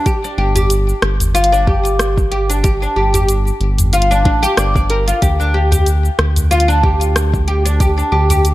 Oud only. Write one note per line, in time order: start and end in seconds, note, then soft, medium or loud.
0.06 0.16 G4 medium
0.24 0.38 D4 medium
0.38 0.54 G4 medium
0.56 0.69 G4 medium
1.35 1.51 F4 loud
1.52 1.66 D4 loud
1.67 2.30 G4 medium
2.31 2.48 G4 medium
2.49 2.63 D4 medium
2.64 2.74 G4 medium
2.82 2.96 D4 medium
2.96 3.12 G4 medium
3.14 3.28 G4 medium
3.93 4.09 F4 loud
4.11 4.24 D4 loud
4.25 4.41 D4 medium
4.43 4.56 G4 loud
4.58 4.74 D5 medium
4.75 4.88 D5 medium
4.90 5.06 A#4 medium
5.08 5.21 F4 medium
5.22 5.32 G4 medium
5.40 5.54 D4 medium
5.54 5.70 G4 medium
5.72 5.86 G4 medium
6.51 6.67 F4 loud
6.68 6.82 D4 medium
6.83 7.46 G4 medium
7.48 7.64 G4 medium
7.65 7.79 D4 medium
7.80 7.90 G4 medium
7.98 8.11 D4 medium
8.12 8.28 G4 medium
8.30 8.44 G4 medium